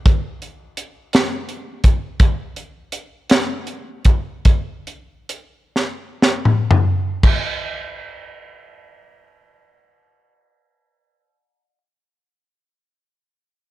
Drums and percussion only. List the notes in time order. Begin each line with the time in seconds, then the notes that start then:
0.06 kick, closed hi-hat
0.42 closed hi-hat
0.77 closed hi-hat
1.13 snare, closed hi-hat
1.49 closed hi-hat
1.84 kick, closed hi-hat
2.20 kick, closed hi-hat
2.56 closed hi-hat
2.92 closed hi-hat
3.29 snare, closed hi-hat
3.67 closed hi-hat
4.05 kick, closed hi-hat
4.45 kick, closed hi-hat
4.87 closed hi-hat
5.29 closed hi-hat
5.76 snare
6.22 snare
6.45 mid tom
6.70 floor tom
7.23 kick, crash